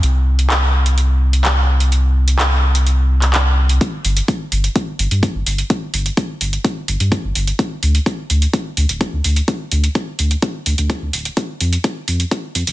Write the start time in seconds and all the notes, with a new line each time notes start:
0.03 C2, closed hi-hat
0.39 closed hi-hat
0.50 clap, closed hi-hat
0.86 closed hi-hat
0.98 closed hi-hat
1.33 closed hi-hat
1.45 clap, closed hi-hat
1.80 closed hi-hat
1.92 closed hi-hat
2.28 closed hi-hat
2.39 clap, closed hi-hat
2.75 closed hi-hat
2.87 closed hi-hat
3.22 clap, closed hi-hat
3.34 clap, closed hi-hat
3.69 closed hi-hat
3.81 kick, closed hi-hat
4.05 G1, open hi-hat
4.17 closed hi-hat
4.28 kick, closed hi-hat
4.52 G1, open hi-hat
4.64 closed hi-hat
4.76 kick, closed hi-hat
4.99 G1, open hi-hat
5.11 G2, closed hi-hat
5.23 kick, closed hi-hat
5.35 G1
5.46 G1, open hi-hat
5.58 closed hi-hat
5.70 kick, closed hi-hat
5.94 G1, open hi-hat
6.06 closed hi-hat
6.17 kick, closed hi-hat
6.41 G1, open hi-hat
6.53 closed hi-hat
6.65 kick, closed hi-hat
6.88 G1, open hi-hat
7.00 G2, closed hi-hat
7.12 kick, closed hi-hat
7.24 G1
7.35 G1, open hi-hat
7.47 closed hi-hat
7.59 kick, closed hi-hat
7.83 D2, open hi-hat
7.95 closed hi-hat
8.06 kick, closed hi-hat
8.30 D2, open hi-hat
8.42 closed hi-hat
8.53 kick, closed hi-hat
8.77 D2, open hi-hat
8.89 D1, closed hi-hat
9.01 kick, closed hi-hat
9.13 D2
9.24 D2, open hi-hat
9.36 closed hi-hat
9.48 kick, closed hi-hat
9.72 D2, open hi-hat
9.84 closed hi-hat
9.95 kick, closed hi-hat
10.19 D2, open hi-hat
10.31 closed hi-hat
10.42 kick, closed hi-hat
10.66 D2, open hi-hat
10.78 D2, closed hi-hat
10.90 kick, closed hi-hat
11.02 D2
11.13 D1, open hi-hat
11.25 closed hi-hat
11.37 kick, closed hi-hat
11.61 F2, open hi-hat
11.73 closed hi-hat
11.84 kick, closed hi-hat
12.08 F2, open hi-hat
12.20 closed hi-hat
12.31 kick, closed hi-hat
12.55 F2, open hi-hat
12.67 F1, closed hi-hat